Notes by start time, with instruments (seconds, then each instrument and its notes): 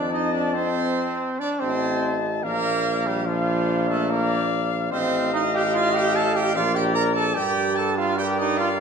Already playing: tuba F2, trombone D4, trumpet D5 A5, french horn D#5
0.13 trombone D#4, trumpet D#5
0.33 trombone D4, trumpet D5
0.54 trombone C4, trumpet C5
1.39 trombone D4, trumpet D5
1.60 tuba A1, trombone C4, trumpet C5 A5, french horn D#5
2.43 tuba A#1, trombone A#3, trumpet A#4 F5, french horn D5
3.07 trombone G3, trumpet G4
3.26 trombone F3, trumpet F4 F5, french horn D5
3.89 trombone A3, trumpet A4
4.09 trombone A#3, trumpet A#4 F5, french horn D5
4.91 tuba A1, trombone C4, trumpet C5 F5, french horn D#5
5.33 trombone D#4, trumpet D#5
5.54 trombone G4, trumpet G5
5.73 trombone F4, trumpet F5
5.94 trombone G4, trumpet G5
6.15 trombone A4, trumpet A5
6.35 trombone G4, trumpet G5
6.55 tuba A#1, trombone F4, french horn A#4, trumpet D5 F5
6.75 trombone G4, trumpet G5
6.94 trombone A#4, trumpet A#5
7.15 trombone A4, trumpet A5
7.35 tuba G2, trombone G4, french horn A#4, trumpet D5 G5
7.76 trombone A4, trumpet A5
7.97 trombone F4, trumpet F5
8.17 trombone G4, french horn A#4, trumpet D5 G5
8.38 trombone D#4, trumpet D#5
8.58 trombone F4, trumpet F5